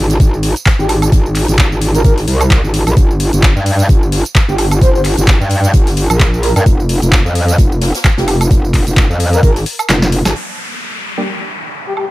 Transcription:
Already playing: G#1
0.10 snare, closed hi-hat, tambourine
0.20 G#1, kick, closed hi-hat, tambourine
0.34 tambourine
0.43 snare, closed hi-hat, open hi-hat
0.56 closed hi-hat, tambourine
0.66 kick, snare, clap, closed hi-hat, tambourine
0.79 G#1 G4, tambourine
0.89 G4, closed hi-hat, open hi-hat, high woodblock
1.02 closed hi-hat, tambourine, high woodblock
1.12 G#1, kick, closed hi-hat, tambourine
1.26 tambourine
1.35 clap, open hi-hat
1.48 G#1, closed hi-hat, tambourine
1.58 kick, snare, clap, closed hi-hat, tambourine
1.71 G#1, tambourine
1.81 closed hi-hat, open hi-hat
1.94 A#4, snare, closed hi-hat, tambourine
2.04 G#1 A#4, kick, closed hi-hat, tambourine
2.18 snare, open hi-hat, tambourine
2.28 C2, closed hi-hat, open hi-hat
2.41 closed hi-hat, tambourine, high woodblock
2.50 kick, snare, clap, closed hi-hat, tambourine
2.64 G#1, tambourine
2.74 snare, closed hi-hat, open hi-hat
2.87 A#1, closed hi-hat, tambourine, high woodblock
2.96 G1, kick, closed hi-hat, tambourine
3.11 tambourine
3.20 closed hi-hat, open hi-hat
3.33 G1, snare, closed hi-hat, tambourine
3.43 kick, snare, clap, closed hi-hat, tambourine
3.56 G2, tambourine
3.66 closed hi-hat, open hi-hat
3.79 snare, closed hi-hat, tambourine
3.89 G1, kick, closed hi-hat, tambourine
4.03 tambourine
4.12 snare, closed hi-hat, open hi-hat
4.25 closed hi-hat, tambourine
4.35 kick, snare, clap, closed hi-hat, tambourine
4.48 G1 G4, tambourine
4.58 G4, closed hi-hat, open hi-hat, high woodblock
4.71 closed hi-hat, tambourine, high woodblock
4.81 G1 C5, kick, closed hi-hat, tambourine
4.95 C5, tambourine
5.04 clap, open hi-hat
5.18 G1, closed hi-hat, tambourine
5.27 kick, snare, clap, closed hi-hat, tambourine
5.41 G2, tambourine
5.49 closed hi-hat, open hi-hat
5.64 snare, closed hi-hat, tambourine
5.73 G1, kick, closed hi-hat, tambourine
5.87 snare, open hi-hat, tambourine
5.97 closed hi-hat, open hi-hat
6.10 A#1, closed hi-hat, tambourine, high woodblock
6.19 kick, snare, clap, closed hi-hat, tambourine
6.34 tambourine
6.43 A#4, snare, closed hi-hat, open hi-hat
6.56 G2 A#4, closed hi-hat, tambourine, high woodblock
6.66 F1, kick, closed hi-hat, tambourine
6.80 tambourine
6.89 closed hi-hat, open hi-hat
7.01 F1, snare, closed hi-hat, tambourine
7.12 kick, snare, clap, closed hi-hat, tambourine
7.25 F2, tambourine
7.35 closed hi-hat, open hi-hat
7.48 snare, closed hi-hat, tambourine
7.58 F1, kick, closed hi-hat, tambourine
7.72 tambourine
7.81 snare, closed hi-hat, open hi-hat
7.95 snare, closed hi-hat, tambourine
8.04 kick, snare, clap, closed hi-hat, tambourine
8.17 F1 G4, snare, closed hi-hat, tambourine
8.28 G4, closed hi-hat, open hi-hat, high woodblock
8.41 closed hi-hat, tambourine, high woodblock
8.51 F1, kick, closed hi-hat, tambourine
8.65 tambourine
8.74 kick, clap, open hi-hat
8.87 F1, closed hi-hat, tambourine
8.97 kick, snare, clap, closed hi-hat, tambourine
9.10 F2, tambourine
9.19 closed hi-hat, open hi-hat
9.33 A#4, closed hi-hat, tambourine
9.43 G#1 A#4, kick, closed hi-hat, tambourine
9.56 snare, open hi-hat, tambourine
9.66 closed hi-hat, open hi-hat
9.79 closed hi-hat, tambourine, high woodblock
9.89 F1, snare, clap, closed hi-hat, tambourine
10.02 snare, tambourine
10.12 closed hi-hat, open hi-hat
10.25 G#1, snare, closed hi-hat, tambourine, high woodblock
10.35 downlifter
11.18 G3 A#3 D4 G4
11.87 G4
11.97 G4, high woodblock

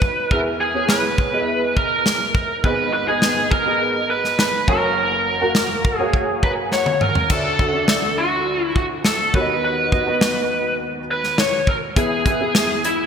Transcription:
Already playing: B1 B2 B3 D#4 F#4 B4 C#5
0.02 kick
0.31 E2 E3 B3 G#4 A#4 E5, kick
0.61 G#4
0.74 B3 G#4 C#5
0.89 B4, snare
1.18 kick
1.32 B3 G#4 D#5
1.39 E5
1.77 A#4, kick
2.06 snare
2.35 kick
2.64 G#1 G#2 B3 G#4 B4 D#5, kick
2.93 B4
3.07 B3 G#4 D#5
3.22 snare
3.51 A#4, kick
3.66 B3 G#4 D#5
4.10 B4
4.24 snare
4.39 B4, snare
4.68 F#1 F#2 A#3 F#4 A#4 C#5, kick
5.41 A#3 F#4 A#4
5.55 snare
5.85 kick
5.99 A#3 F#4 G#4 C#5
6.13 kick
6.43 B4 A#5, kick
6.71 C#5 F#5, snare
6.86 high tom
7.01 A#4 F#5, mid tom
7.15 floor tom
7.30 D2 D3 D4 F#4 A4 E5, kick, crash
7.59 D4 F#4 A4, kick
7.73 D4 F#4 E5
7.88 snare
8.18 F#4
8.64 E4
8.76 F#4, kick
9.05 A4, snare
9.33 D#2 D#3 B3 F#4 B4 C#5, kick
9.40 D#5
9.64 B4
9.92 B3 F#4 D#5, kick
10.07 B3 F#4 D#5
10.21 snare
11.11 B4
11.24 snare
11.38 C#5, snare
11.67 A#4, kick
11.96 E2 E3 B3 G#4 E5, kick, closed hi-hat
12.26 B3 G#4 E5, kick, closed hi-hat
12.40 B3 G#4 E5
12.55 snare, closed hi-hat
12.84 E4, closed hi-hat

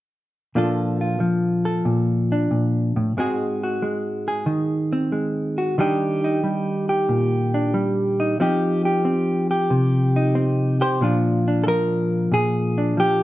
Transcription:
0.55 A#2 F3 D4 F4 A4
1.01 F4
1.20 F3
1.65 A4
1.85 A#2
2.32 D4
2.51 A#2
2.96 A2
3.17 G#2 G#3 C4 F#4 G#4
3.63 F#4
3.82 G#3
4.28 G#4
4.46 D#3
4.93 C4
5.12 G#3
5.58 F#4
5.78 D#3 G3 D4 D#4 G4
6.24 D#4
6.44 G3
6.89 G4
7.09 A#2
7.54 D4
7.74 G3
8.20 D#4
8.40 F3 C4 D#4 G4
8.85 G4
9.05 C4
9.51 G4
9.70 C3
10.16 D#4
10.35 C4
10.81 G4 C5
11.01 A#2 F3 D4 F4
11.48 D4
11.64 F3 A4
11.68 A#4
12.32 A#2 G#4
12.78 D4
12.97 F3 G4

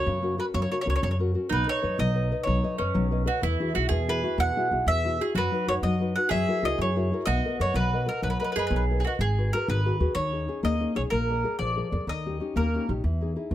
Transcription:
Already playing: C#4 F#4 A#4 C#5
0.07 F#2 C#3
0.22 C#4 F#4 A#4
0.38 C#4 F#4 A#4 B4
0.54 F#2 C#3 C#5
0.62 C#5
0.71 C#4 F#4 A#4 C#5
0.81 C#5
0.86 C#2 C#4 F#4 A#4
0.90 C#5
0.96 C#5
1.02 F#2 C#3 C#5
1.11 C#5
1.19 C#4 F#4 A#4
1.34 C#4 F#4 A#4
1.49 B1 B3 D#4 B4
1.68 B4 C#5 D#5
1.82 F#2 B4 C#5 D#5
1.98 B1 F#3 D#5
2.15 B4 C#5 D#5
2.31 B4 C#5 D#5
2.43 B1 F#3 C#5
2.63 B4 C#5 D#5
2.78 F#2 C#4 B4 C#5 D#5
2.94 B1 F#3
3.11 B4 C#5 D#5
3.26 F#4 B4 C#5 D#5
3.41 E2 E3 E4
3.60 E4 F#4 G#4
3.74 B1 E4 F#4 G#4
3.89 E2 B2 G#4
4.08 E4 F#4 G#4 B4
4.23 E4 F#4 G#4
4.38 E2 B2 F#5
4.57 E4 F#4 G#4
4.71 B1 E4 F#4 G#4
4.86 E2 B2 E5
5.05 E4 F#4 G#4
5.20 E4 F#4 G#4
5.35 F#2 F#3 F#4 B4
5.52 D#4 F#4 B4
5.67 F#2 D#4 F#4 B4 C#5
5.83 F#2 F#3 D#5
6.00 D#4 F#4 B4
6.16 D#4 F#4 B4 F#5
6.29 F#2 F#3 G#4 E5
6.48 E4 F#4 A#4
6.63 C#2 E4 F#4 A#4 D#5
6.78 F#2 C#3 C#5
6.96 E4 F#4 A#4
7.12 E4 F#4 A#4
7.26 B1 B3 F#4 D#5
7.45 A#4 B4 D#5
7.59 F#2 A#4 B4 C#5 D#5
7.74 B1 F#3 B4
7.93 A#4 B4 D#5
8.06 A#4 B4 D#5
8.22 B1 F#3 B4
8.30 B4
8.40 A#4 B4 D#5
8.44 B4
8.52 G#4 B4
8.56 F#2 A#4 B4 D#5
8.67 B1 B4
8.72 F#3
8.76 B4
8.90 A#4 B4 D#5
9.00 G#4
9.04 F#4 A#4 B4 D#5
9.19 G#1 G#3 G#4
9.38 F#4 G#4 B4
9.53 F#4 G#4 A#4 B4
9.68 G#1 D#3 B4
9.86 F#4 G#4 B4
10.00 D#2 F#4 G#4 B4
10.15 D#2 D#3 C#5
10.32 C#4 D#4 G#4
10.48 C#4 D#4 G#4
10.63 D#2 A#3 D#5
10.80 C#4 D#4 G#4
10.95 B1 C#4 D#4 G#4 C#5
11.10 A#1 A#3 A#4
11.29 G#4 A#4 D5
11.44 G#4 A#4 D5
11.59 A#1 F3 D5
11.76 G#4 A#4 D5
11.92 F2 G#4 A#4 D5
12.07 D#2 D#3 D#5
12.26 C#4 D#4 G4
12.40 C#4 D#4 G4
12.56 D#2 A#3 A#4
12.74 C#4 D#4 G4
12.89 A#1 C#4 D#4 G4
13.04 E2 E3
13.21 D#4 E4 G#4
13.36 D#4 E4 G#4
13.51 E2 B2

